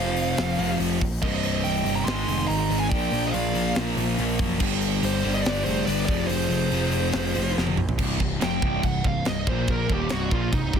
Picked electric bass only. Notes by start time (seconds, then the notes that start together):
Already playing: F1
0.38 F1
0.59 F1
0.79 F1
1.01 A#1
1.23 C1
1.64 C1
1.85 G1
2.06 G#1
2.27 F1
2.49 G#1
2.70 G#1
2.91 A#1
3.12 A#1
3.34 A#1
3.76 A#1
3.97 A#1
4.19 A#1
4.39 F#1
4.60 G1
5.03 G1
5.25 G1
5.46 G1
5.66 F1
5.88 G1
6.09 F1
6.29 F1
6.49 F1
6.72 F1
7.14 F1
7.36 F1
7.57 F1
7.78 A#1
7.99 C1
8.20 C1
8.43 F1
8.62 C1
8.84 C1
9.04 C1
9.27 C1
9.47 A#1
9.90 D#1
10.11 C1
10.31 A#1
10.53 C1
10.73 C1